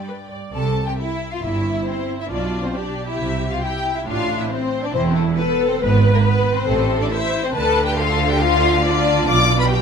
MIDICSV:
0, 0, Header, 1, 6, 480
1, 0, Start_track
1, 0, Key_signature, 0, "major"
1, 0, Tempo, 441176
1, 579, Time_signature, 4, 2, 24, 8
1, 5844, Tempo, 433839
1, 10763, End_track
2, 0, Start_track
2, 0, Title_t, "Violin section"
2, 0, Program_c, 0, 48
2, 0, Note_on_c, 0, 79, 40
2, 339, Note_off_c, 0, 79, 0
2, 589, Note_on_c, 0, 81, 85
2, 923, Note_off_c, 0, 81, 0
2, 952, Note_on_c, 0, 79, 65
2, 1058, Note_on_c, 0, 76, 75
2, 1068, Note_off_c, 0, 79, 0
2, 1414, Note_off_c, 0, 76, 0
2, 1424, Note_on_c, 0, 77, 69
2, 1544, Note_off_c, 0, 77, 0
2, 1545, Note_on_c, 0, 76, 76
2, 2023, Note_off_c, 0, 76, 0
2, 2032, Note_on_c, 0, 72, 78
2, 2378, Note_off_c, 0, 72, 0
2, 2407, Note_on_c, 0, 76, 76
2, 2450, Note_off_c, 0, 76, 0
2, 2507, Note_on_c, 0, 74, 80
2, 2854, Note_off_c, 0, 74, 0
2, 2867, Note_on_c, 0, 72, 69
2, 2980, Note_on_c, 0, 74, 76
2, 2982, Note_off_c, 0, 72, 0
2, 3338, Note_off_c, 0, 74, 0
2, 3345, Note_on_c, 0, 76, 91
2, 3810, Note_off_c, 0, 76, 0
2, 3823, Note_on_c, 0, 77, 74
2, 3938, Note_off_c, 0, 77, 0
2, 3944, Note_on_c, 0, 79, 89
2, 4291, Note_off_c, 0, 79, 0
2, 4303, Note_on_c, 0, 76, 71
2, 4418, Note_off_c, 0, 76, 0
2, 4438, Note_on_c, 0, 77, 98
2, 4777, Note_off_c, 0, 77, 0
2, 4777, Note_on_c, 0, 76, 69
2, 4893, Note_off_c, 0, 76, 0
2, 4901, Note_on_c, 0, 72, 84
2, 5246, Note_off_c, 0, 72, 0
2, 5276, Note_on_c, 0, 74, 85
2, 5376, Note_on_c, 0, 72, 97
2, 5381, Note_off_c, 0, 74, 0
2, 5463, Note_off_c, 0, 72, 0
2, 5610, Note_on_c, 0, 69, 79
2, 5697, Note_off_c, 0, 69, 0
2, 5834, Note_on_c, 0, 71, 105
2, 6193, Note_off_c, 0, 71, 0
2, 6204, Note_on_c, 0, 72, 82
2, 6325, Note_off_c, 0, 72, 0
2, 6332, Note_on_c, 0, 71, 101
2, 6688, Note_off_c, 0, 71, 0
2, 6695, Note_on_c, 0, 70, 84
2, 6741, Note_off_c, 0, 70, 0
2, 6822, Note_on_c, 0, 71, 98
2, 7166, Note_off_c, 0, 71, 0
2, 7179, Note_on_c, 0, 72, 99
2, 7651, Note_off_c, 0, 72, 0
2, 7663, Note_on_c, 0, 74, 94
2, 7707, Note_off_c, 0, 74, 0
2, 7769, Note_on_c, 0, 76, 113
2, 8121, Note_off_c, 0, 76, 0
2, 8128, Note_on_c, 0, 72, 91
2, 8225, Note_on_c, 0, 81, 107
2, 8248, Note_off_c, 0, 72, 0
2, 8589, Note_on_c, 0, 79, 101
2, 8590, Note_off_c, 0, 81, 0
2, 8710, Note_on_c, 0, 77, 105
2, 8716, Note_off_c, 0, 79, 0
2, 9069, Note_off_c, 0, 77, 0
2, 9084, Note_on_c, 0, 79, 109
2, 9198, Note_on_c, 0, 77, 114
2, 9204, Note_off_c, 0, 79, 0
2, 9678, Note_on_c, 0, 74, 119
2, 9682, Note_off_c, 0, 77, 0
2, 10163, Note_off_c, 0, 74, 0
2, 10170, Note_on_c, 0, 86, 119
2, 10521, Note_off_c, 0, 86, 0
2, 10528, Note_on_c, 0, 83, 106
2, 10628, Note_on_c, 0, 79, 103
2, 10645, Note_off_c, 0, 83, 0
2, 10763, Note_off_c, 0, 79, 0
2, 10763, End_track
3, 0, Start_track
3, 0, Title_t, "Viola section"
3, 0, Program_c, 1, 48
3, 86, Note_on_c, 1, 71, 48
3, 173, Note_off_c, 1, 71, 0
3, 331, Note_on_c, 1, 74, 40
3, 573, Note_off_c, 1, 74, 0
3, 1543, Note_on_c, 1, 64, 63
3, 2455, Note_off_c, 1, 64, 0
3, 2514, Note_on_c, 1, 65, 64
3, 2974, Note_off_c, 1, 65, 0
3, 2994, Note_on_c, 1, 67, 61
3, 3943, Note_off_c, 1, 67, 0
3, 3943, Note_on_c, 1, 64, 62
3, 4418, Note_off_c, 1, 64, 0
3, 4420, Note_on_c, 1, 62, 68
3, 4885, Note_off_c, 1, 62, 0
3, 4893, Note_on_c, 1, 60, 65
3, 5369, Note_off_c, 1, 60, 0
3, 5369, Note_on_c, 1, 64, 72
3, 5835, Note_off_c, 1, 64, 0
3, 5835, Note_on_c, 1, 69, 79
3, 6321, Note_off_c, 1, 69, 0
3, 6331, Note_on_c, 1, 71, 92
3, 7268, Note_off_c, 1, 71, 0
3, 7287, Note_on_c, 1, 69, 82
3, 7756, Note_off_c, 1, 69, 0
3, 7777, Note_on_c, 1, 72, 82
3, 8239, Note_on_c, 1, 71, 96
3, 8253, Note_off_c, 1, 72, 0
3, 8715, Note_off_c, 1, 71, 0
3, 8732, Note_on_c, 1, 69, 85
3, 9197, Note_off_c, 1, 69, 0
3, 9199, Note_on_c, 1, 65, 87
3, 9666, Note_off_c, 1, 65, 0
3, 9679, Note_on_c, 1, 65, 92
3, 10624, Note_off_c, 1, 65, 0
3, 10631, Note_on_c, 1, 67, 90
3, 10763, Note_off_c, 1, 67, 0
3, 10763, End_track
4, 0, Start_track
4, 0, Title_t, "Violin section"
4, 0, Program_c, 2, 48
4, 0, Note_on_c, 2, 74, 46
4, 345, Note_off_c, 2, 74, 0
4, 583, Note_on_c, 2, 69, 76
4, 919, Note_off_c, 2, 69, 0
4, 952, Note_on_c, 2, 67, 51
4, 999, Note_off_c, 2, 67, 0
4, 1081, Note_on_c, 2, 64, 76
4, 1426, Note_off_c, 2, 64, 0
4, 1427, Note_on_c, 2, 65, 61
4, 1543, Note_off_c, 2, 65, 0
4, 1549, Note_on_c, 2, 64, 69
4, 2016, Note_off_c, 2, 64, 0
4, 2018, Note_on_c, 2, 60, 61
4, 2378, Note_off_c, 2, 60, 0
4, 2384, Note_on_c, 2, 64, 60
4, 2499, Note_off_c, 2, 64, 0
4, 2499, Note_on_c, 2, 62, 72
4, 2850, Note_off_c, 2, 62, 0
4, 2863, Note_on_c, 2, 60, 60
4, 2974, Note_on_c, 2, 62, 72
4, 2980, Note_off_c, 2, 60, 0
4, 3330, Note_on_c, 2, 64, 73
4, 3335, Note_off_c, 2, 62, 0
4, 3802, Note_off_c, 2, 64, 0
4, 3817, Note_on_c, 2, 65, 68
4, 3933, Note_off_c, 2, 65, 0
4, 3935, Note_on_c, 2, 67, 75
4, 4294, Note_off_c, 2, 67, 0
4, 4299, Note_on_c, 2, 64, 67
4, 4346, Note_off_c, 2, 64, 0
4, 4416, Note_on_c, 2, 65, 89
4, 4766, Note_off_c, 2, 65, 0
4, 4772, Note_on_c, 2, 64, 62
4, 4891, Note_off_c, 2, 64, 0
4, 4892, Note_on_c, 2, 60, 78
4, 5249, Note_off_c, 2, 60, 0
4, 5249, Note_on_c, 2, 62, 71
4, 5366, Note_on_c, 2, 60, 88
4, 5368, Note_off_c, 2, 62, 0
4, 5601, Note_on_c, 2, 57, 71
4, 5605, Note_off_c, 2, 60, 0
4, 5688, Note_off_c, 2, 57, 0
4, 5850, Note_on_c, 2, 59, 76
4, 6201, Note_off_c, 2, 59, 0
4, 6206, Note_on_c, 2, 60, 68
4, 6318, Note_on_c, 2, 59, 88
4, 6326, Note_off_c, 2, 60, 0
4, 6678, Note_on_c, 2, 58, 79
4, 6681, Note_off_c, 2, 59, 0
4, 6794, Note_on_c, 2, 59, 90
4, 6799, Note_off_c, 2, 58, 0
4, 7152, Note_on_c, 2, 60, 91
4, 7159, Note_off_c, 2, 59, 0
4, 7636, Note_on_c, 2, 62, 75
4, 7638, Note_off_c, 2, 60, 0
4, 7758, Note_off_c, 2, 62, 0
4, 7768, Note_on_c, 2, 64, 90
4, 8127, Note_off_c, 2, 64, 0
4, 8129, Note_on_c, 2, 60, 79
4, 8176, Note_off_c, 2, 60, 0
4, 8252, Note_on_c, 2, 69, 106
4, 8604, Note_off_c, 2, 69, 0
4, 8610, Note_on_c, 2, 67, 80
4, 8726, Note_off_c, 2, 67, 0
4, 8750, Note_on_c, 2, 65, 95
4, 9096, Note_off_c, 2, 65, 0
4, 9098, Note_on_c, 2, 67, 82
4, 9204, Note_on_c, 2, 65, 105
4, 9209, Note_off_c, 2, 67, 0
4, 9675, Note_off_c, 2, 65, 0
4, 9691, Note_on_c, 2, 62, 92
4, 10153, Note_on_c, 2, 74, 110
4, 10160, Note_off_c, 2, 62, 0
4, 10513, Note_on_c, 2, 71, 84
4, 10520, Note_off_c, 2, 74, 0
4, 10564, Note_off_c, 2, 71, 0
4, 10641, Note_on_c, 2, 67, 93
4, 10763, Note_off_c, 2, 67, 0
4, 10763, End_track
5, 0, Start_track
5, 0, Title_t, "Cello section"
5, 0, Program_c, 3, 48
5, 570, Note_on_c, 3, 48, 64
5, 978, Note_off_c, 3, 48, 0
5, 1530, Note_on_c, 3, 43, 66
5, 1936, Note_off_c, 3, 43, 0
5, 2492, Note_on_c, 3, 47, 67
5, 2893, Note_off_c, 3, 47, 0
5, 3459, Note_on_c, 3, 48, 68
5, 3856, Note_off_c, 3, 48, 0
5, 4413, Note_on_c, 3, 45, 72
5, 4811, Note_off_c, 3, 45, 0
5, 5362, Note_on_c, 3, 40, 84
5, 5762, Note_off_c, 3, 40, 0
5, 6321, Note_on_c, 3, 44, 84
5, 6723, Note_off_c, 3, 44, 0
5, 7287, Note_on_c, 3, 45, 85
5, 7685, Note_off_c, 3, 45, 0
5, 8248, Note_on_c, 3, 50, 93
5, 10124, Note_off_c, 3, 50, 0
5, 10157, Note_on_c, 3, 47, 87
5, 10763, Note_off_c, 3, 47, 0
5, 10763, End_track
6, 0, Start_track
6, 0, Title_t, "Double bass section"
6, 0, Program_c, 4, 48
6, 0, Note_on_c, 4, 43, 43
6, 339, Note_off_c, 4, 43, 0
6, 573, Note_on_c, 4, 36, 70
6, 980, Note_off_c, 4, 36, 0
6, 1540, Note_on_c, 4, 31, 61
6, 1941, Note_off_c, 4, 31, 0
6, 2495, Note_on_c, 4, 35, 71
6, 2895, Note_off_c, 4, 35, 0
6, 3453, Note_on_c, 4, 36, 69
6, 3853, Note_off_c, 4, 36, 0
6, 4413, Note_on_c, 4, 33, 74
6, 4811, Note_off_c, 4, 33, 0
6, 5363, Note_on_c, 4, 28, 77
6, 5762, Note_off_c, 4, 28, 0
6, 6326, Note_on_c, 4, 32, 91
6, 6725, Note_off_c, 4, 32, 0
6, 7291, Note_on_c, 4, 33, 87
6, 7687, Note_off_c, 4, 33, 0
6, 8244, Note_on_c, 4, 38, 96
6, 10122, Note_off_c, 4, 38, 0
6, 10168, Note_on_c, 4, 35, 90
6, 10763, Note_off_c, 4, 35, 0
6, 10763, End_track
0, 0, End_of_file